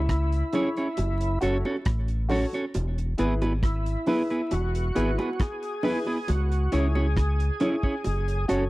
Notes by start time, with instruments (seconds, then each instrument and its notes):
Already playing: fingered electric bass C#2, tonewheel organ E4
0.09 kick, cross-stick, closed hi-hat
0.32 closed hi-hat
0.53 clean electric guitar C#4 E4 G#4 C#5, upright piano E4 G#4 C#5, closed hi-hat, low bongo
0.77 clean electric guitar C#4 E4 G#4 C#5, closed hi-hat
0.97 fingered electric bass F#1, closed hi-hat, high bongo
1.21 upright piano A4 C#5, closed hi-hat
1.41 fingered electric bass F#1, clean electric guitar C#4 F#4 A4 C#5, upright piano F#4 A4 C#5, closed hi-hat, high bongo
1.65 clean electric guitar C#4 F#4 A4 C#5, high bongo
1.85 fingered electric bass A1, kick, cross-stick, closed hi-hat
2.08 closed hi-hat
2.29 clean electric guitar C#4 F#4 A4 C#5, upright piano F#4 A4 C#5, open hi-hat, low bongo
2.53 clean electric guitar C#4 F#4 A4 C#5, closed hi-hat, high bongo
2.74 fingered electric bass E1, closed hi-hat, high bongo
2.98 closed hi-hat
3.18 fingered electric bass G#1, clean electric guitar B3 E4 G#4 B4, upright piano E4 G#4 B4, closed hi-hat
3.42 clean electric guitar B3 E4 G#4 B4, closed hi-hat, high bongo
3.63 tonewheel organ E4, kick, cross-stick, closed hi-hat
3.86 closed hi-hat
4.06 clean electric guitar B3 E4 G#4 B4, upright piano E4 G#4 B4, open hi-hat, low bongo
4.30 clean electric guitar B3 E4 G#4 B4, closed hi-hat
4.51 fingered electric bass E1, tonewheel organ F#4, closed hi-hat, high bongo
4.74 upright piano G#4 B4, closed hi-hat
4.95 fingered electric bass G#1, clean electric guitar B3 E4 G#4 B4, upright piano E4 G#4 B4, closed hi-hat, high bongo
5.18 clean electric guitar B3 E4 G#4 B4, closed hi-hat, high bongo
5.40 tonewheel organ G#4, kick, cross-stick, closed hi-hat
5.63 closed hi-hat
5.83 clean electric guitar B3 E4 G#4 B4, upright piano E4 G#4 B4, open hi-hat, low bongo
6.06 clean electric guitar B3 E4 G#4 B4, high bongo
6.28 fingered electric bass C#2, tonewheel organ F#4, closed hi-hat, high bongo
6.52 closed hi-hat
6.72 fingered electric bass C#2, clean electric guitar C#4 E4 G#4 C#5, upright piano E4 G#4 C#5, tonewheel organ G#4, closed hi-hat
6.95 clean electric guitar C#4 E4 G#4 C#5, high bongo
7.17 kick, cross-stick, closed hi-hat
7.40 closed hi-hat
7.60 clean electric guitar C#4 E4 G#4 C#5, upright piano E4 G#4 C#5, closed hi-hat, low bongo
7.83 clean electric guitar C#4 E4 G#4 C#5, kick
8.04 fingered electric bass F#1, closed hi-hat, high bongo
8.28 upright piano A4 C#5, closed hi-hat
8.48 fingered electric bass F#1, clean electric guitar C#4 F#4 A4 C#5, upright piano F#4 A4 C#5, closed hi-hat, high bongo